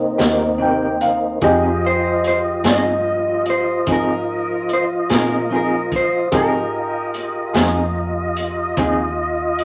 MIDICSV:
0, 0, Header, 1, 7, 480
1, 0, Start_track
1, 0, Tempo, 816327
1, 837, Time_signature, 12, 3, 24, 8
1, 5668, End_track
2, 0, Start_track
2, 0, Title_t, "Clean electric guitar"
2, 0, Program_c, 0, 27
2, 1097, Note_on_c, 0, 72, 74
2, 1311, Note_off_c, 0, 72, 0
2, 1338, Note_on_c, 0, 72, 82
2, 1400, Note_off_c, 0, 72, 0
2, 1584, Note_on_c, 0, 75, 91
2, 2027, Note_off_c, 0, 75, 0
2, 2058, Note_on_c, 0, 72, 76
2, 2271, Note_off_c, 0, 72, 0
2, 2307, Note_on_c, 0, 70, 85
2, 2749, Note_off_c, 0, 70, 0
2, 2784, Note_on_c, 0, 72, 78
2, 2845, Note_off_c, 0, 72, 0
2, 3026, Note_on_c, 0, 70, 74
2, 3258, Note_off_c, 0, 70, 0
2, 3268, Note_on_c, 0, 70, 74
2, 3477, Note_off_c, 0, 70, 0
2, 3505, Note_on_c, 0, 72, 81
2, 3738, Note_off_c, 0, 72, 0
2, 3746, Note_on_c, 0, 70, 77
2, 5147, Note_off_c, 0, 70, 0
2, 5668, End_track
3, 0, Start_track
3, 0, Title_t, "Upright piano"
3, 0, Program_c, 1, 0
3, 0, Note_on_c, 1, 63, 52
3, 0, Note_on_c, 1, 70, 47
3, 0, Note_on_c, 1, 74, 52
3, 358, Note_on_c, 1, 79, 49
3, 581, Note_off_c, 1, 79, 0
3, 595, Note_on_c, 1, 77, 53
3, 809, Note_off_c, 1, 63, 0
3, 811, Note_off_c, 1, 70, 0
3, 815, Note_off_c, 1, 74, 0
3, 819, Note_off_c, 1, 77, 0
3, 837, Note_on_c, 1, 67, 60
3, 841, Note_on_c, 1, 68, 57
3, 846, Note_on_c, 1, 75, 66
3, 3693, Note_off_c, 1, 67, 0
3, 3695, Note_off_c, 1, 68, 0
3, 3698, Note_off_c, 1, 75, 0
3, 3715, Note_on_c, 1, 67, 47
3, 3720, Note_on_c, 1, 68, 48
3, 3724, Note_on_c, 1, 70, 58
3, 5668, Note_off_c, 1, 67, 0
3, 5668, Note_off_c, 1, 68, 0
3, 5668, Note_off_c, 1, 70, 0
3, 5668, End_track
4, 0, Start_track
4, 0, Title_t, "Tonewheel organ"
4, 0, Program_c, 2, 16
4, 0, Note_on_c, 2, 58, 57
4, 0, Note_on_c, 2, 60, 56
4, 0, Note_on_c, 2, 63, 53
4, 815, Note_off_c, 2, 63, 0
4, 816, Note_off_c, 2, 58, 0
4, 816, Note_off_c, 2, 60, 0
4, 830, Note_on_c, 2, 53, 57
4, 834, Note_on_c, 2, 75, 56
4, 837, Note_on_c, 2, 65, 55
4, 3690, Note_off_c, 2, 53, 0
4, 3692, Note_off_c, 2, 75, 0
4, 3693, Note_off_c, 2, 65, 0
4, 3716, Note_on_c, 2, 65, 58
4, 3719, Note_on_c, 2, 75, 57
4, 5668, Note_off_c, 2, 65, 0
4, 5668, Note_off_c, 2, 75, 0
4, 5668, End_track
5, 0, Start_track
5, 0, Title_t, "Clean electric guitar"
5, 0, Program_c, 3, 27
5, 108, Note_on_c, 3, 67, 52
5, 118, Note_on_c, 3, 63, 44
5, 125, Note_on_c, 3, 58, 44
5, 256, Note_off_c, 3, 67, 0
5, 262, Note_off_c, 3, 63, 0
5, 265, Note_off_c, 3, 58, 0
5, 343, Note_on_c, 3, 48, 58
5, 351, Note_on_c, 3, 58, 61
5, 358, Note_on_c, 3, 63, 58
5, 360, Note_on_c, 3, 67, 63
5, 494, Note_off_c, 3, 48, 0
5, 498, Note_off_c, 3, 58, 0
5, 501, Note_off_c, 3, 63, 0
5, 503, Note_off_c, 3, 67, 0
5, 836, Note_on_c, 3, 53, 71
5, 841, Note_on_c, 3, 60, 86
5, 843, Note_on_c, 3, 63, 79
5, 843, Note_on_c, 3, 68, 93
5, 981, Note_off_c, 3, 53, 0
5, 983, Note_off_c, 3, 60, 0
5, 984, Note_off_c, 3, 63, 0
5, 984, Note_off_c, 3, 68, 0
5, 1555, Note_on_c, 3, 68, 49
5, 1565, Note_on_c, 3, 63, 49
5, 1574, Note_on_c, 3, 60, 42
5, 1700, Note_off_c, 3, 68, 0
5, 1705, Note_off_c, 3, 63, 0
5, 1710, Note_off_c, 3, 60, 0
5, 2276, Note_on_c, 3, 53, 72
5, 2277, Note_on_c, 3, 60, 77
5, 2280, Note_on_c, 3, 63, 73
5, 2285, Note_on_c, 3, 68, 77
5, 2421, Note_off_c, 3, 53, 0
5, 2421, Note_off_c, 3, 60, 0
5, 2423, Note_off_c, 3, 63, 0
5, 2425, Note_off_c, 3, 68, 0
5, 2999, Note_on_c, 3, 68, 51
5, 3008, Note_on_c, 3, 63, 43
5, 3017, Note_on_c, 3, 60, 41
5, 3142, Note_off_c, 3, 68, 0
5, 3146, Note_off_c, 3, 63, 0
5, 3151, Note_off_c, 3, 60, 0
5, 3233, Note_on_c, 3, 53, 53
5, 3242, Note_on_c, 3, 60, 53
5, 3246, Note_on_c, 3, 63, 51
5, 3250, Note_on_c, 3, 68, 58
5, 3379, Note_off_c, 3, 53, 0
5, 3383, Note_off_c, 3, 60, 0
5, 3386, Note_off_c, 3, 63, 0
5, 3387, Note_off_c, 3, 68, 0
5, 3717, Note_on_c, 3, 60, 71
5, 3718, Note_on_c, 3, 53, 72
5, 3725, Note_on_c, 3, 63, 77
5, 3728, Note_on_c, 3, 68, 77
5, 3861, Note_off_c, 3, 53, 0
5, 3861, Note_off_c, 3, 60, 0
5, 3865, Note_off_c, 3, 63, 0
5, 3866, Note_off_c, 3, 68, 0
5, 4433, Note_on_c, 3, 68, 53
5, 4445, Note_on_c, 3, 63, 51
5, 4453, Note_on_c, 3, 60, 43
5, 4579, Note_off_c, 3, 68, 0
5, 4584, Note_off_c, 3, 63, 0
5, 4588, Note_off_c, 3, 60, 0
5, 5161, Note_on_c, 3, 60, 80
5, 5162, Note_on_c, 3, 53, 74
5, 5167, Note_on_c, 3, 63, 83
5, 5168, Note_on_c, 3, 68, 90
5, 5302, Note_off_c, 3, 60, 0
5, 5303, Note_off_c, 3, 53, 0
5, 5305, Note_off_c, 3, 63, 0
5, 5306, Note_off_c, 3, 68, 0
5, 5668, End_track
6, 0, Start_track
6, 0, Title_t, "Fingered electric bass"
6, 0, Program_c, 4, 33
6, 0, Note_on_c, 4, 36, 73
6, 95, Note_off_c, 4, 36, 0
6, 113, Note_on_c, 4, 39, 81
6, 813, Note_off_c, 4, 39, 0
6, 833, Note_on_c, 4, 41, 74
6, 1534, Note_off_c, 4, 41, 0
6, 1550, Note_on_c, 4, 43, 84
6, 2252, Note_off_c, 4, 43, 0
6, 2276, Note_on_c, 4, 44, 81
6, 2975, Note_off_c, 4, 44, 0
6, 3000, Note_on_c, 4, 46, 76
6, 3697, Note_off_c, 4, 46, 0
6, 3720, Note_on_c, 4, 44, 78
6, 4417, Note_off_c, 4, 44, 0
6, 4437, Note_on_c, 4, 41, 86
6, 5134, Note_off_c, 4, 41, 0
6, 5158, Note_on_c, 4, 39, 82
6, 5668, Note_off_c, 4, 39, 0
6, 5668, End_track
7, 0, Start_track
7, 0, Title_t, "Drums"
7, 112, Note_on_c, 9, 42, 72
7, 117, Note_on_c, 9, 38, 87
7, 170, Note_off_c, 9, 42, 0
7, 176, Note_off_c, 9, 38, 0
7, 593, Note_on_c, 9, 42, 56
7, 652, Note_off_c, 9, 42, 0
7, 832, Note_on_c, 9, 42, 66
7, 834, Note_on_c, 9, 36, 88
7, 890, Note_off_c, 9, 42, 0
7, 893, Note_off_c, 9, 36, 0
7, 1318, Note_on_c, 9, 42, 53
7, 1377, Note_off_c, 9, 42, 0
7, 1553, Note_on_c, 9, 42, 67
7, 1559, Note_on_c, 9, 38, 96
7, 1612, Note_off_c, 9, 42, 0
7, 1618, Note_off_c, 9, 38, 0
7, 2032, Note_on_c, 9, 42, 52
7, 2091, Note_off_c, 9, 42, 0
7, 2273, Note_on_c, 9, 42, 74
7, 2276, Note_on_c, 9, 36, 87
7, 2332, Note_off_c, 9, 42, 0
7, 2335, Note_off_c, 9, 36, 0
7, 2758, Note_on_c, 9, 42, 51
7, 2816, Note_off_c, 9, 42, 0
7, 2996, Note_on_c, 9, 42, 60
7, 3001, Note_on_c, 9, 38, 79
7, 3054, Note_off_c, 9, 42, 0
7, 3060, Note_off_c, 9, 38, 0
7, 3480, Note_on_c, 9, 36, 75
7, 3482, Note_on_c, 9, 42, 59
7, 3539, Note_off_c, 9, 36, 0
7, 3541, Note_off_c, 9, 42, 0
7, 3716, Note_on_c, 9, 42, 79
7, 3719, Note_on_c, 9, 36, 95
7, 3775, Note_off_c, 9, 42, 0
7, 3778, Note_off_c, 9, 36, 0
7, 4199, Note_on_c, 9, 42, 55
7, 4258, Note_off_c, 9, 42, 0
7, 4437, Note_on_c, 9, 42, 77
7, 4442, Note_on_c, 9, 38, 103
7, 4495, Note_off_c, 9, 42, 0
7, 4501, Note_off_c, 9, 38, 0
7, 4918, Note_on_c, 9, 42, 59
7, 4977, Note_off_c, 9, 42, 0
7, 5156, Note_on_c, 9, 42, 75
7, 5158, Note_on_c, 9, 36, 97
7, 5215, Note_off_c, 9, 42, 0
7, 5217, Note_off_c, 9, 36, 0
7, 5636, Note_on_c, 9, 42, 52
7, 5668, Note_off_c, 9, 42, 0
7, 5668, End_track
0, 0, End_of_file